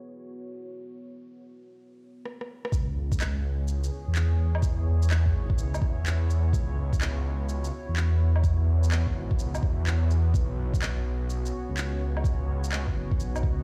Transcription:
Already playing: ambient pad B3 E4 F#4 C#5
2.25 cross-stick
2.41 cross-stick
2.65 cross-stick
2.72 detuned saw bass C#2, ambient pad B3 E4 G#4 C#5, kick, shaker
3.12 kick, shaker
3.20 clap, low woodblock, shaker
3.68 shaker
3.84 shaker
4.08 detuned saw bass E2
4.15 clap, shaker
4.55 low woodblock
4.62 kick, shaker
5.02 shaker
5.11 clap, low woodblock, shaker
5.26 kick
5.35 detuned saw bass G#1
5.50 kick
5.58 detuned saw bass C#2, shaker
5.74 low woodblock, shaker
5.82 detuned saw bass E2, kick
6.06 clap, shaker
6.30 shaker
6.53 detuned saw bass C#2, ambient pad F#4, kick, shaker
6.93 kick, shaker
7.01 clap, low woodblock, shaker
7.49 shaker
7.64 shaker
7.89 detuned saw bass E2
7.96 clap, shaker
8.36 low woodblock
8.44 kick, shaker
8.84 shaker
8.92 clap, low woodblock, shaker
9.07 kick
9.15 detuned saw bass G#1
9.31 kick
9.39 detuned saw bass C#2, shaker
9.55 low woodblock, shaker
9.62 detuned saw bass E2, kick
9.87 clap, shaker
10.11 shaker
10.34 detuned saw bass B1, ambient pad C#4 C#5, kick, shaker
10.74 kick, shaker
10.82 clap, low woodblock, shaker
11.30 shaker
11.46 shaker
11.69 detuned saw bass C#2
11.77 clap, shaker
12.17 low woodblock
12.24 kick, shaker
12.64 shaker
12.72 clap, low woodblock, shaker
12.88 kick
12.96 detuned saw bass F#1
13.11 kick
13.20 detuned saw bass B1, shaker
13.36 low woodblock, shaker
13.43 detuned saw bass C#2, kick

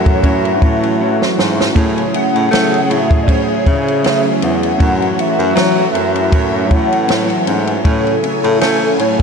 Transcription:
Already playing: baritone saxophone F#2, analog synth pad E3 F#3 F#4, synth keys A3 C#4 E4 F#4 C#5, clean electric guitar C#4 E4 A4, soft synth lead C#5
0.06 kick, ride
0.23 clean electric guitar F#3 C#4 E4 A4, synth keys A3 C#4 E4 F#4 C#5, soft synth lead E5, kick, ride
0.45 ride
0.61 baritone saxophone A2, clean electric guitar C#4 E4 A4, kick, ride
0.83 ride
0.99 clean electric guitar F#3 C#4 E4 A4
1.22 snare
1.37 baritone saxophone G#2, clean electric guitar C#4 E4 A4, snare
1.61 snare
1.75 baritone saxophone A2, analog synth pad C#3 G#4, synth keys A3 C#4 E4 G#4 C#5, clean electric guitar A3 C#4 E4 G#4, kick, hi-hat pedal, ride
1.98 ride
2.14 clean electric guitar C#4 E4 G#4, soft synth lead F#5, ride
2.34 baritone saxophone A2, ride
2.51 baritone saxophone A3, clean electric guitar A3 C#4 E4 G#4, snare, ride
2.74 ride
2.89 baritone saxophone A2, clean electric guitar C#4 E4 G#4, soft synth lead E5, ride
3.11 kick, ride
3.23 synth keys A3 C#4, soft synth lead D5
3.27 clean electric guitar A3 C#4 E4, synth keys E4 G#4 C5, soft synth lead C#5, kick, ride
3.32 clean electric guitar G#4, synth keys C#5
3.66 baritone saxophone C#3, clean electric guitar C#4 E4 G#4, soft synth lead E5, kick, ride
3.88 ride
4.03 clean electric guitar A3 C#4 E4 G#4, snare, ride
4.41 baritone saxophone E2, clean electric guitar C#4 E4 G#4, soft synth lead F#5, ride
4.63 ride
4.78 baritone saxophone F#2, analog synth pad E3 F#4, clean electric guitar F#3 C#4 E4 A4, synth keys A3 C#4 E4 F#4 C#5, kick, ride
5.02 ride
5.17 clean electric guitar C#4 E4 A4, soft synth lead E5, ride
5.39 baritone saxophone F#2, ride
5.55 baritone saxophone F#3, clean electric guitar F#3 C#4 E4 A4, snare, ride
5.93 baritone saxophone F#2, clean electric guitar C#4 E4 A4, ride
6.16 ride
6.30 clean electric guitar F#3 C#4 E4 A4, synth keys A3 C#4 E4 F#4, soft synth lead E5, kick, ride
6.35 synth keys C#5
6.69 baritone saxophone A2, clean electric guitar C#4 E4 A4, soft synth lead F#5, kick, ride
6.92 ride
7.07 clean electric guitar F#3 C#4 E4 A4, snare, ride
7.30 ride
7.46 baritone saxophone G#2, clean electric guitar C#4 E4 A4, ride
7.67 ride
7.84 baritone saxophone A2, analog synth pad C#3 G#5, clean electric guitar A3 C#4 E4, synth keys A3 C#4 E4 C#5 G#5, soft synth lead A4, kick, ride
8.07 ride
8.23 clean electric guitar C#4 E4, ride
8.44 baritone saxophone A2, ride
8.60 clean electric guitar A3 C#4 E4, baritone saxophone A3, snare, ride
8.98 baritone saxophone A2, clean electric guitar C#4 E4 G#4, soft synth lead C#5, ride

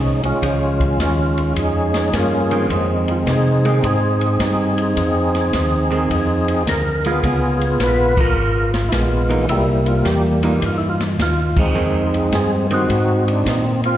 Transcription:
Already playing: tonewheel organ C2 G#3 C#4 D#4
0.23 tonewheel organ C2 G#3 C#4 F4, ride
0.42 tonewheel organ C#2, hollow-body jazz guitar F3 G#3 C#4, kick, ride
0.80 kick, ride
0.99 tonewheel organ D#2 G#3 C#4 F4, kick, snare, hi-hat pedal, ride
1.38 ride
1.55 tonewheel organ F2 D#4 G#4, kick, ride
1.94 snare, ride
2.12 tonewheel organ G2 A#3 C#4 F4, kick, snare, hi-hat pedal, ride
2.51 hollow-body jazz guitar D#3 G#3 C4, ride
2.69 tonewheel organ F2 G#3 C4 D#4, kick, ride
3.08 tonewheel organ F4, ride
3.26 tonewheel organ C3 C4 D#4, kick, snare, hi-hat pedal, ride
3.31 tonewheel organ G#4
3.65 hollow-body jazz guitar D#3 G#3 C4, ride
3.83 tonewheel organ G#2 C4 D#4 G#4, kick, ride
4.21 ride
4.40 tonewheel organ G2, kick, snare, hi-hat pedal, ride
4.78 ride
4.97 tonewheel organ F2, kick, ride
5.35 snare, ride
5.53 tonewheel organ D#2, kick, snare, hi-hat pedal, ride
5.91 hollow-body jazz guitar D#3 G#3 C4, ride
6.10 tonewheel organ F2, kick, ride
6.48 ride
6.67 tonewheel organ D2 A#4, kick, snare, hi-hat pedal, ride
7.05 hollow-body jazz guitar G#3 B3 F4, tonewheel organ B3 F4 G#4, ride
7.23 tonewheel organ C#2, hollow-body jazz guitar G#3 B3 F4, kick, ride
7.61 ride
7.80 tonewheel organ A#1 B4, kick, snare, hi-hat pedal, ride
8.17 tonewheel organ F4 A#4, kick, crash
8.35 tonewheel organ G#1
8.74 snare, ride
8.88 tonewheel organ A#1 E4, snare, hi-hat pedal, ride
8.92 tonewheel organ G#3 B3 F4, kick
9.29 hollow-body jazz guitar E3 A#3 D#4, ride
9.48 tonewheel organ C2 G3 A#3 E4, kick, ride
9.86 tonewheel organ F4, ride
10.05 tonewheel organ E2 G4, kick, snare, hi-hat pedal, ride
10.43 hollow-body jazz guitar E3 A#3 D#4, tonewheel organ F4, ride
10.58 tonewheel organ G2 G4, kick, ride
10.66 tonewheel organ F4
10.78 tonewheel organ E4
10.90 tonewheel organ F4
11.01 snare, ride
11.18 tonewheel organ D#2 F4, kick, snare, hi-hat pedal, ride
11.57 tonewheel organ G#3 C4 D#4, kick, crash
11.75 tonewheel organ F2, hollow-body jazz guitar D#3 G#3 C4
12.14 ride
12.31 tonewheel organ G2 G#4, kick, snare, hi-hat pedal, ride
12.71 hollow-body jazz guitar D#3 G#3 C4, tonewheel organ C4 D#4 F#4, ride
12.89 tonewheel organ G#2, kick, ride
13.28 tonewheel organ D4, ride
13.46 tonewheel organ A#2 D#4, kick, snare, hi-hat pedal, ride
13.84 tonewheel organ C4 F4, ride

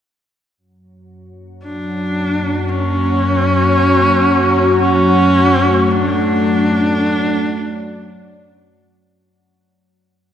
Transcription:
0.58 synth drone F#2 F#3, ambient pad A#3
1.63 horsehead fiddle D4, ambient pad F#4
2.50 ambient pad C#5 F#5
2.69 horsehead fiddle C#4
4.82 ambient pad A3, horsehead fiddle C#4
5.92 horsehead fiddle D4
6.76 ambient pad D5

